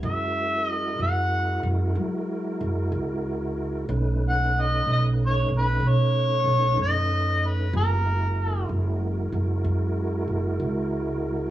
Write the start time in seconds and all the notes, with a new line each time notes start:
0.03 F#2 G#3 E4 F#4 A#4 E5
0.67 D#5
0.99 F#2 F#5
1.63 F#2
1.95 F#3
2.61 F#2
2.92 C#2
3.89 B1 A3 C#4 D#4 B4
4.29 F#5
4.61 D#5
4.85 B1
4.93 D#5
5.26 C#5
5.49 B1
5.58 B4
5.80 B2
5.89 C#5
6.44 B1
6.77 F#2
6.82 D#5
7.46 B4
7.73 F#1 G#3 B3 F4 G4 A#4
8.05 G#3 E4 F#4 A#4
8.69 F#1
9.32 F#1
9.64 F#2
10.28 F#1
10.60 C#2